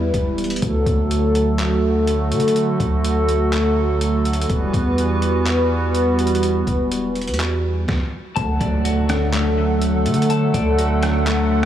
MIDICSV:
0, 0, Header, 1, 6, 480
1, 0, Start_track
1, 0, Tempo, 483871
1, 618, Time_signature, 4, 2, 24, 8
1, 11560, End_track
2, 0, Start_track
2, 0, Title_t, "Clean electric guitar"
2, 0, Program_c, 0, 27
2, 8290, Note_on_c, 0, 81, 91
2, 8537, Note_on_c, 0, 74, 89
2, 8776, Note_on_c, 0, 66, 77
2, 9016, Note_on_c, 0, 62, 91
2, 9265, Note_on_c, 0, 57, 82
2, 9499, Note_on_c, 0, 50, 77
2, 9734, Note_off_c, 0, 81, 0
2, 9977, Note_off_c, 0, 74, 0
2, 10217, Note_off_c, 0, 66, 0
2, 10220, Note_on_c, 0, 81, 100
2, 10455, Note_on_c, 0, 74, 84
2, 10457, Note_off_c, 0, 62, 0
2, 10700, Note_on_c, 0, 66, 82
2, 10701, Note_off_c, 0, 57, 0
2, 10937, Note_on_c, 0, 62, 94
2, 10938, Note_off_c, 0, 50, 0
2, 11178, Note_on_c, 0, 57, 81
2, 11420, Note_on_c, 0, 50, 70
2, 11560, Note_off_c, 0, 50, 0
2, 11560, Note_off_c, 0, 57, 0
2, 11560, Note_off_c, 0, 62, 0
2, 11560, Note_off_c, 0, 66, 0
2, 11560, Note_off_c, 0, 74, 0
2, 11560, Note_off_c, 0, 81, 0
2, 11560, End_track
3, 0, Start_track
3, 0, Title_t, "Analog synth pad"
3, 0, Program_c, 1, 89
3, 0, Note_on_c, 1, 52, 79
3, 0, Note_on_c, 1, 55, 71
3, 0, Note_on_c, 1, 59, 71
3, 0, Note_on_c, 1, 64, 76
3, 0, Note_on_c, 1, 71, 87
3, 581, Note_off_c, 1, 55, 0
3, 581, Note_off_c, 1, 59, 0
3, 581, Note_off_c, 1, 71, 0
3, 582, Note_off_c, 1, 52, 0
3, 599, Note_off_c, 1, 64, 0
3, 620, Note_on_c, 1, 54, 70
3, 620, Note_on_c, 1, 57, 72
3, 620, Note_on_c, 1, 69, 87
3, 622, Note_on_c, 1, 50, 79
3, 622, Note_on_c, 1, 66, 71
3, 4420, Note_off_c, 1, 54, 0
3, 4420, Note_off_c, 1, 69, 0
3, 4421, Note_off_c, 1, 57, 0
3, 4422, Note_off_c, 1, 50, 0
3, 4422, Note_off_c, 1, 66, 0
3, 4460, Note_on_c, 1, 59, 70
3, 4461, Note_on_c, 1, 66, 72
3, 4461, Note_on_c, 1, 71, 88
3, 4462, Note_on_c, 1, 55, 72
3, 4463, Note_on_c, 1, 52, 82
3, 7785, Note_off_c, 1, 59, 0
3, 7786, Note_off_c, 1, 55, 0
3, 7786, Note_off_c, 1, 66, 0
3, 7786, Note_off_c, 1, 71, 0
3, 7787, Note_off_c, 1, 52, 0
3, 8299, Note_on_c, 1, 57, 73
3, 8299, Note_on_c, 1, 69, 90
3, 8300, Note_on_c, 1, 50, 79
3, 8300, Note_on_c, 1, 54, 72
3, 8300, Note_on_c, 1, 78, 73
3, 11560, Note_off_c, 1, 50, 0
3, 11560, Note_off_c, 1, 54, 0
3, 11560, Note_off_c, 1, 57, 0
3, 11560, Note_off_c, 1, 69, 0
3, 11560, Note_off_c, 1, 78, 0
3, 11560, End_track
4, 0, Start_track
4, 0, Title_t, "808-style bass"
4, 0, Program_c, 2, 38
4, 0, Note_on_c, 2, 40, 102
4, 108, Note_off_c, 2, 40, 0
4, 137, Note_on_c, 2, 28, 110
4, 598, Note_off_c, 2, 28, 0
4, 618, Note_on_c, 2, 38, 109
4, 848, Note_off_c, 2, 38, 0
4, 857, Note_on_c, 2, 38, 104
4, 2298, Note_on_c, 2, 50, 93
4, 2312, Note_off_c, 2, 38, 0
4, 2754, Note_off_c, 2, 50, 0
4, 2777, Note_on_c, 2, 38, 103
4, 4417, Note_off_c, 2, 38, 0
4, 4459, Note_on_c, 2, 28, 106
4, 4689, Note_off_c, 2, 28, 0
4, 4697, Note_on_c, 2, 40, 102
4, 6578, Note_off_c, 2, 40, 0
4, 6616, Note_on_c, 2, 28, 102
4, 7217, Note_on_c, 2, 40, 98
4, 7232, Note_off_c, 2, 28, 0
4, 7788, Note_off_c, 2, 40, 0
4, 8298, Note_on_c, 2, 38, 113
4, 8528, Note_off_c, 2, 38, 0
4, 8536, Note_on_c, 2, 38, 103
4, 9979, Note_on_c, 2, 50, 104
4, 9993, Note_off_c, 2, 38, 0
4, 10434, Note_off_c, 2, 50, 0
4, 10456, Note_on_c, 2, 38, 103
4, 11560, Note_off_c, 2, 38, 0
4, 11560, End_track
5, 0, Start_track
5, 0, Title_t, "Impact"
5, 0, Program_c, 3, 103
5, 8299, Note_on_c, 3, 60, 84
5, 10218, Note_off_c, 3, 60, 0
5, 11560, End_track
6, 0, Start_track
6, 0, Title_t, "Drums"
6, 137, Note_on_c, 9, 36, 105
6, 138, Note_on_c, 9, 42, 77
6, 236, Note_off_c, 9, 36, 0
6, 238, Note_off_c, 9, 42, 0
6, 378, Note_on_c, 9, 42, 47
6, 437, Note_off_c, 9, 42, 0
6, 437, Note_on_c, 9, 42, 56
6, 498, Note_off_c, 9, 42, 0
6, 498, Note_on_c, 9, 42, 67
6, 558, Note_off_c, 9, 42, 0
6, 558, Note_on_c, 9, 42, 85
6, 618, Note_off_c, 9, 42, 0
6, 618, Note_on_c, 9, 36, 102
6, 618, Note_on_c, 9, 42, 77
6, 717, Note_off_c, 9, 36, 0
6, 717, Note_off_c, 9, 42, 0
6, 857, Note_on_c, 9, 36, 84
6, 859, Note_on_c, 9, 42, 72
6, 956, Note_off_c, 9, 36, 0
6, 958, Note_off_c, 9, 42, 0
6, 1100, Note_on_c, 9, 42, 77
6, 1200, Note_off_c, 9, 42, 0
6, 1340, Note_on_c, 9, 42, 64
6, 1439, Note_off_c, 9, 42, 0
6, 1579, Note_on_c, 9, 42, 71
6, 1580, Note_on_c, 9, 39, 111
6, 1678, Note_off_c, 9, 42, 0
6, 1680, Note_off_c, 9, 39, 0
6, 2058, Note_on_c, 9, 42, 80
6, 2157, Note_off_c, 9, 42, 0
6, 2298, Note_on_c, 9, 42, 65
6, 2379, Note_off_c, 9, 42, 0
6, 2379, Note_on_c, 9, 42, 64
6, 2458, Note_off_c, 9, 42, 0
6, 2458, Note_on_c, 9, 42, 67
6, 2538, Note_off_c, 9, 42, 0
6, 2538, Note_on_c, 9, 42, 73
6, 2637, Note_off_c, 9, 42, 0
6, 2777, Note_on_c, 9, 36, 88
6, 2780, Note_on_c, 9, 42, 70
6, 2876, Note_off_c, 9, 36, 0
6, 2879, Note_off_c, 9, 42, 0
6, 3021, Note_on_c, 9, 42, 80
6, 3120, Note_off_c, 9, 42, 0
6, 3259, Note_on_c, 9, 42, 65
6, 3359, Note_off_c, 9, 42, 0
6, 3500, Note_on_c, 9, 42, 75
6, 3502, Note_on_c, 9, 39, 105
6, 3599, Note_off_c, 9, 42, 0
6, 3601, Note_off_c, 9, 39, 0
6, 3979, Note_on_c, 9, 42, 78
6, 4078, Note_off_c, 9, 42, 0
6, 4219, Note_on_c, 9, 42, 65
6, 4299, Note_off_c, 9, 42, 0
6, 4299, Note_on_c, 9, 42, 64
6, 4380, Note_off_c, 9, 42, 0
6, 4380, Note_on_c, 9, 42, 67
6, 4459, Note_on_c, 9, 36, 107
6, 4460, Note_off_c, 9, 42, 0
6, 4460, Note_on_c, 9, 42, 76
6, 4558, Note_off_c, 9, 36, 0
6, 4559, Note_off_c, 9, 42, 0
6, 4698, Note_on_c, 9, 36, 91
6, 4702, Note_on_c, 9, 42, 69
6, 4797, Note_off_c, 9, 36, 0
6, 4801, Note_off_c, 9, 42, 0
6, 4942, Note_on_c, 9, 42, 77
6, 5041, Note_off_c, 9, 42, 0
6, 5179, Note_on_c, 9, 42, 65
6, 5279, Note_off_c, 9, 42, 0
6, 5420, Note_on_c, 9, 42, 72
6, 5422, Note_on_c, 9, 39, 109
6, 5519, Note_off_c, 9, 42, 0
6, 5521, Note_off_c, 9, 39, 0
6, 5898, Note_on_c, 9, 42, 77
6, 5997, Note_off_c, 9, 42, 0
6, 6138, Note_on_c, 9, 42, 65
6, 6219, Note_off_c, 9, 42, 0
6, 6219, Note_on_c, 9, 42, 65
6, 6298, Note_off_c, 9, 42, 0
6, 6298, Note_on_c, 9, 42, 64
6, 6378, Note_off_c, 9, 42, 0
6, 6378, Note_on_c, 9, 42, 76
6, 6477, Note_off_c, 9, 42, 0
6, 6617, Note_on_c, 9, 36, 85
6, 6619, Note_on_c, 9, 42, 71
6, 6716, Note_off_c, 9, 36, 0
6, 6719, Note_off_c, 9, 42, 0
6, 6860, Note_on_c, 9, 42, 78
6, 6959, Note_off_c, 9, 42, 0
6, 7098, Note_on_c, 9, 42, 41
6, 7157, Note_off_c, 9, 42, 0
6, 7157, Note_on_c, 9, 42, 49
6, 7217, Note_off_c, 9, 42, 0
6, 7217, Note_on_c, 9, 42, 59
6, 7278, Note_off_c, 9, 42, 0
6, 7278, Note_on_c, 9, 42, 65
6, 7339, Note_off_c, 9, 42, 0
6, 7339, Note_on_c, 9, 42, 71
6, 7340, Note_on_c, 9, 39, 107
6, 7438, Note_off_c, 9, 42, 0
6, 7440, Note_off_c, 9, 39, 0
6, 7818, Note_on_c, 9, 36, 109
6, 7823, Note_on_c, 9, 38, 90
6, 7917, Note_off_c, 9, 36, 0
6, 7922, Note_off_c, 9, 38, 0
6, 8298, Note_on_c, 9, 36, 114
6, 8298, Note_on_c, 9, 42, 80
6, 8397, Note_off_c, 9, 36, 0
6, 8397, Note_off_c, 9, 42, 0
6, 8537, Note_on_c, 9, 36, 91
6, 8539, Note_on_c, 9, 42, 72
6, 8636, Note_off_c, 9, 36, 0
6, 8638, Note_off_c, 9, 42, 0
6, 8780, Note_on_c, 9, 42, 83
6, 8880, Note_off_c, 9, 42, 0
6, 9019, Note_on_c, 9, 42, 67
6, 9025, Note_on_c, 9, 37, 103
6, 9118, Note_off_c, 9, 42, 0
6, 9124, Note_off_c, 9, 37, 0
6, 9259, Note_on_c, 9, 42, 75
6, 9261, Note_on_c, 9, 39, 114
6, 9358, Note_off_c, 9, 42, 0
6, 9360, Note_off_c, 9, 39, 0
6, 9737, Note_on_c, 9, 42, 82
6, 9836, Note_off_c, 9, 42, 0
6, 9977, Note_on_c, 9, 42, 68
6, 10057, Note_off_c, 9, 42, 0
6, 10057, Note_on_c, 9, 42, 66
6, 10138, Note_off_c, 9, 42, 0
6, 10138, Note_on_c, 9, 42, 69
6, 10217, Note_off_c, 9, 42, 0
6, 10217, Note_on_c, 9, 42, 78
6, 10316, Note_off_c, 9, 42, 0
6, 10456, Note_on_c, 9, 36, 90
6, 10458, Note_on_c, 9, 42, 74
6, 10555, Note_off_c, 9, 36, 0
6, 10558, Note_off_c, 9, 42, 0
6, 10699, Note_on_c, 9, 42, 82
6, 10798, Note_off_c, 9, 42, 0
6, 10937, Note_on_c, 9, 42, 66
6, 10943, Note_on_c, 9, 37, 97
6, 11036, Note_off_c, 9, 42, 0
6, 11042, Note_off_c, 9, 37, 0
6, 11178, Note_on_c, 9, 42, 74
6, 11180, Note_on_c, 9, 39, 115
6, 11277, Note_off_c, 9, 42, 0
6, 11279, Note_off_c, 9, 39, 0
6, 11560, End_track
0, 0, End_of_file